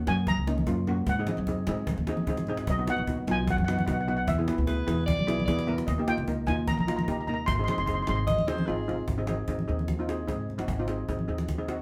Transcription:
0.07 F#2 A#3 C#4 F#4 G#5, cajon slap, low conga
0.18 cajon slap
0.27 A#5, cajon bass, high conga
0.37 C#2
0.47 A#3 C#4 D#4, cajon slap
0.58 cajon slap, high conga
0.67 F#2 A#3 C#4 F4, cajon bass
0.87 A#3 C#4 F#4, cajon slap, low conga
0.97 cajon slap
1.06 G#2 F#5, cajon bass
1.19 C4 D#4 G#4
1.27 C4 D#4 G#4, cajon slap, high conga
1.37 F#2, cajon slap, low conga
1.47 C4 D#4 G#4, cajon bass
1.67 G#2 C4 D#4 G#4, cajon slap, low conga
1.77 cajon slap
1.87 cajon bass, high conga
1.97 D#2, high conga
2.07 C4 D#4 G#4, cajon slap
2.17 cajon slap, high conga
2.27 G#2 C4 D#4 G#4, cajon bass
2.37 cajon slap, high conga
2.47 C4 D#4 G#4, cajon slap, low conga
2.57 cajon slap
2.67 B1 D#5, cajon bass
2.78 B3 D#4 F#4
2.87 B3 D#4 F#4 F#5, cajon slap
2.97 A#1, cajon slap, low conga
3.07 B3 D#4 F#4, cajon bass
3.27 B1 B3 D#4 F4, cajon slap, low conga
3.31 G#5
3.38 cajon slap
3.48 F#5, cajon bass, high conga
3.57 F#2 F#5, high conga
3.64 B3 D#4 F#4 F#5, cajon slap
3.72 F#5
3.78 F#5, cajon slap, high conga
3.85 B1 B3 D#4 F#4 F#5, cajon bass
3.92 F#5
4.01 F#5
4.07 B3 D#4 F#4 F#5, cajon slap, low conga
4.17 F#5, cajon slap
4.27 E2 E5, cajon bass
4.38 B3 E4 G#4
4.48 B3 E4 B4, cajon slap
4.58 D2, cajon slap, low conga
4.67 B3 E4 G#4 B4, cajon bass
4.87 E2 B3 E4 G#4, cajon slap, low conga
4.98 cajon slap
5.06 D5, cajon bass, high conga
5.17 B1, high conga
5.27 B3 E4 G#4, cajon slap
5.39 cajon slap, high conga
5.46 E2 B3 E4 G#4 D5, cajon bass
5.59 cajon slap
5.67 B3 E4 A#4, cajon slap, low conga
5.78 cajon slap
5.87 D#2 D#5, cajon bass
5.98 A#3 D#4 G4
6.08 A#3 D#4 F4 G5, cajon slap
6.17 C#2, cajon slap, low conga
6.28 A#3 D#4 A#4, cajon bass
6.46 D#2 A#3 D#4 F4 G#5, cajon slap, low conga
6.58 cajon slap
6.68 A#5, cajon bass, high conga
6.74 A#1 A#5
6.79 A#5, high conga
6.87 A#3 D#4 F4 A#5, cajon slap
6.96 A#5, cajon slap, high conga
7.04 A#5
7.08 D#2 A#3 D#4 G4 A#5, cajon bass
7.21 A#5
7.27 A#3 D#4 A#4 A#5, cajon slap, low conga
7.34 A#5
7.39 cajon slap
7.46 G#1 C6, cajon bass
7.55 C4 D#4 G#4 C6
7.64 C6, high conga
7.68 C4 D#4 G#4 C6, cajon slap
7.78 F#1 C6, cajon slap, low conga
7.86 C4 D#4 G#4 C6, cajon bass
7.94 C6
8.02 C6
8.07 G#1 C4 D#4 G#4 C6, cajon slap, low conga
8.15 C6, cajon slap
8.27 D#5, cajon bass, high conga
8.38 D#2, high conga
8.48 C4 D#4 G#4 C5, cajon slap
8.58 cajon slap, high conga
8.67 G#1 C4 D#4 F4 G#4, cajon slap
8.88 C4 D#4 F4, cajon slap, low conga
8.98 cajon slap
9.07 G#1, cajon bass
9.18 C4 D#4 G#4
9.27 C4 D#4 G#4, cajon slap, high conga
9.38 cajon slap
9.48 G#1 C4 D#4 G#4, cajon bass
9.59 high conga
9.68 D#2 C4 D#4 G#4, cajon slap, low conga
9.78 cajon slap, high conga
9.88 cajon bass, cajon slap, high conga
9.99 C4 D#4 F4
10.09 C4 D#4 G#4, cajon slap
10.19 cajon slap
10.27 G#2 C4 D#4 G#4, cajon bass, low conga
10.49 cajon slap, low conga
10.58 D#2 C4 D#4 F#4, cajon slap
10.68 G#1, cajon bass
10.79 C4 D#4 F4
10.88 C4 D#4 G#4, cajon slap
10.98 cajon slap
11.08 G#1 C4 D#4 G#4, cajon bass
11.19 high conga
11.28 D#2 C4 D#4 G#4, cajon slap
11.38 cajon slap, high conga
11.48 cajon bass, cajon slap, high conga
11.58 C4 D#4 G#4
11.68 C4 D#4 F#4, cajon slap

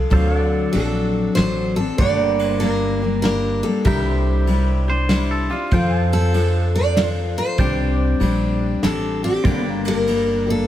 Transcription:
Already playing: F3 C4 F4 A4 C5 F5
0.10 D2 D3 F#3 C4 D4 A4 C5, kick, ride
0.15 F5
0.35 D5 F#5
0.73 A#1 F#3 C4 D4 A4, ride
1.35 A1 F#3 C4 D4 A4 C5, snare, ride
1.76 C4 D4 A4
1.98 G1 G2 D3 G3 A3 A#3 D4 G4 D5 F#5, kick, ride
2.19 A#3 G5
2.39 ride
2.47 C5
2.60 G3 A#3 D4 A#4, ride
2.64 G4
3.02 G3 A#3 D4 G4
3.22 G3 A#3 D4 G4 A#4, snare, ride
3.63 G3 A#3 D4 G4 A4
3.85 C2 C3 G3 D4 E4 G4 A#4 E5 G5, kick, ride
4.11 C5
4.47 G3 D4 E4 G4, ride
4.87 D4 E4 G4 C5
5.09 G3 D4 E4 G4, snare, ride
5.31 A4
5.50 D4 E4 F4 G4
5.71 F2 F3 C4 F4 A4 C5 F5 G5, kick, ride
5.99 A5
6.12 A4, ride
6.33 F3 C4 F4 A4, ride
6.75 D5
6.95 F3 C4 F4 A4 C5, snare, ride
7.38 C5
7.58 C2 C3 G3 C4 D4 G4 C5 D5 G5, kick, ride
8.20 A#1 G3 C4 D4 G4, ride
8.83 A1 G3 C4 D4 G4 A4, snare, ride
9.23 C4 D4 G4
9.44 G1 G2 D3 G3 A#3 C4 D4 G4 D5 G5, kick, ride
9.69 A#3
9.85 A#4, ride
10.07 G3 A#3 D4 G4, ride
10.46 G3 A#3 D4 G4 A4

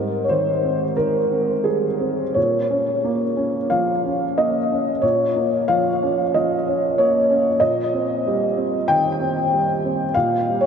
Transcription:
Already playing: G#2 G3 C4 A#4
0.24 C#5
0.29 D#3 C5
0.64 C4
0.97 D#3 A#4
1.32 C4
1.64 G3 G#4
2.00 C4
2.34 A#2 C#5
2.70 C#4
3.04 A#3
3.37 C#4
3.70 F3 F5
4.05 C#4
4.38 A#3 D#5
4.72 C#4
5.02 A#2 C#5
5.36 A#3
5.68 F3 F5
6.03 C#4
6.34 F3 D#5
6.67 C#4
6.98 A#3 C#5
7.30 C#4
7.60 A#2 D#5
7.93 C4
8.27 G3
8.57 C4
8.88 D#3 G5
9.20 C4
9.53 G3
9.84 C4
10.14 A#2 F5
10.48 G3
10.61 C#5

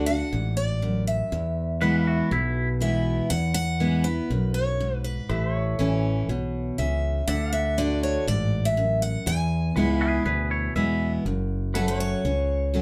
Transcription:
Already playing: D2 D5 F#5
0.06 D4 F#4 F#5
0.33 A1 G#2
0.57 D5
0.82 F#2
1.07 E5
1.32 E2
1.81 E3 G#3 B3 E4 B4 F#5
2.07 F#4 E5
2.31 B1 B2 E4
2.80 E3 G#3 B3 E4 E5
3.30 E2 F#5
3.54 F#5
3.80 E3 G#3 B3 E4
4.04 B3 E4 B4
4.30 B1 F#2
4.54 C#5
4.80 G#2
5.04 B4
5.29 A1 A2 B4 E5
5.54 C#5
5.79 A1 E3 A3 C#4 E4
6.29 B1 B2
6.78 C#2 C#3 E5
7.28 D2 D3 D5 E5 F#5
7.53 E5 F#5
7.78 D3 A3 D4 F#4 D5
8.03 C#5
8.27 A1 G#2 D5
8.65 E5
8.77 F#2
9.02 F#5
9.26 E2 G#5
9.76 C#2 E3 G#3 B3 E4 B4 F#5
10.01 G#4 B4 E5
10.25 D2 B2 G#4 B4
10.50 E4 C#5
10.76 E2 E3 G#3 B3 E4 E5
11.25 F#1 F#2
11.74 F#3 A3 C#4 F#4 A4 B4 F#5
11.88 B4
11.99 C#5
12.25 C#2 C#3
12.74 F#3 A3 C#4 F#4

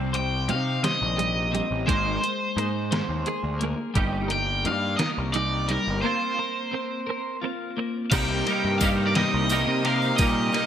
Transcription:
Already playing: C2 C3 G3 C4
0.13 C3 G3 C5 G5, closed hi-hat
0.48 C3 G3 D#4 F5, closed hi-hat
0.83 C3 G3 C5 D#5, snare, closed hi-hat
1.02 A#1
1.16 C3 G3 G4, closed hi-hat
1.52 C3 G3 C4, closed hi-hat
1.71 A1
1.87 G#1 G#3 A#3 D#4 C5, kick, closed hi-hat
2.21 G#3 A#3 C5, closed hi-hat
2.56 G#2 G#3 A#3 D#4, closed hi-hat
2.91 G#3 A#3 C5, snare, closed hi-hat
3.09 D#2
3.26 G#3 A#3 G#4, closed hi-hat
3.44 D2
3.59 G#3 A#3, closed hi-hat
3.63 A#3
3.95 G1 G3 D#4 G4, kick, closed hi-hat
4.28 G3 D#4 A#4 G5, closed hi-hat
4.64 G2 G3 A#3 D#4 F5, closed hi-hat
4.97 G3 D#4 A#4 D#5, snare, closed hi-hat
5.18 C2
5.33 G3 D#4 D5, closed hi-hat
5.68 G3 D#4 A#4, closed hi-hat
5.87 G1
6.02 A#3 C4 F4 C5
6.38 A#3 C4 A#4
6.73 A#3 C4
7.07 A#3 C4 A#4
7.42 A#3 C4 F4
7.78 A#3 C4
8.11 C2 C3 G3 A#3 D#4 G4 A#4 D#5 G5 C6, kick, crash, ride, tambourine
8.47 C3 G3 A#3 D#4 G4 A#4, ride, tambourine
8.65 G2
8.79 C3 G3 A#3 D#4 G4 F5, kick, ride, tambourine
8.83 A#4
9.07 D5
9.15 C3 G3 A#3 D#4 G4 A#4 D#5, snare, ride
9.34 C2
9.49 C3 G3 A#3 D#4 G4 A#4, ride, tambourine
9.67 C3
9.84 C3 G3 A#3 D#4 G4 A#4 F5, ride
10.02 tambourine
10.17 A#2 C3 G3 G4 D#5 F5, kick, ride, tambourine
10.21 A#3 D#4 A#4
10.52 C3 G3 A#3 D#4 G4 A#4, ride, tambourine

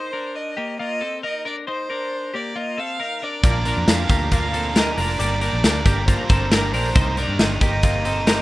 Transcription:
Already playing: D#4 C5
0.13 D4 A#4
0.35 D#5
0.57 A#3 G4
0.79 A#3 F4 D#5
1.01 C4 A4
1.23 D#4 A#4 D#5
1.45 D4 A#4 D5
1.67 D#4 C5
1.90 D4 A#4
2.34 A#3 G4 D5
2.56 A#3 F4 D#5
2.78 C4 A4 F5
3.00 D#4 A#4
3.22 D4 A#4 D5
3.43 A#1 A#2 D3 F3 A#3 D4 F4 A#4 D5, kick, closed hi-hat, tambourine
3.65 F3 A#3 D4 F4 A#4, closed hi-hat, tambourine
3.77 F2
3.87 F2 F3 A#3 D4 F4 A#4 F5, snare, closed hi-hat, tambourine
4.09 D2 F3 A#3 D4 F4 G4 A#4, kick, closed hi-hat, tambourine
4.31 A#2 D3 F3 A#3 D4 F4 A#4 F5, kick, snare, closed hi-hat, tambourine
4.53 F3 A#3 C4 D4 F4 A4 A#4, closed hi-hat, tambourine
4.75 F3 A#3 D4 F4 A#4 D#5, snare, closed hi-hat, tambourine
4.91 D#5
4.97 F1 F3 A#3 D4 F4 A#4 D5, open hi-hat, tambourine
5.19 G1 G2 D3 G3 A#3 D4 G4 A#4 D5, closed hi-hat
5.41 G3 A#3 D4 G4 A#4, closed hi-hat, tambourine
5.53 A#1
5.63 D2 G3 A#3 D4 G4 A#4, snare, closed hi-hat, tambourine
5.86 G1 G3 A#3 D4 G4 A#4, kick, closed hi-hat, tambourine
6.08 G2 D3 G3 A#3 D4 F4 G4 A#4 C5, kick, snare, closed hi-hat, tambourine
6.29 G1 G3 A#3 C4 D4 G4 A4 A#4, kick, closed hi-hat, tambourine
6.51 G3 A#3 D4 G4 A#4, snare, closed hi-hat, tambourine
6.73 A#1 G3 A#3 D4 G4 A#4 C5, open hi-hat, tambourine
6.95 C2 C3 G3 A#3 C4 D#4 G4 A#4 C5, kick, closed hi-hat
7.17 A#3 C4 D4 D#4 G4 A#4 D5, closed hi-hat, tambourine
7.28 G2
7.39 G1 G3 A#3 C4 D#4 G4 A#4 D#5, snare, closed hi-hat, tambourine
7.61 G1 A#3 C4 D#4 G4 A#4 D#5, kick, closed hi-hat, tambourine
7.83 C3 G3 A#3 C4 D#4 F4 G4 A#4, kick, closed hi-hat, tambourine
8.05 A#3 C4 D#4 G4 A4 A#4, closed hi-hat, tambourine
8.27 G3 A#3 C4 D#4 G4 A#4, snare, closed hi-hat, tambourine

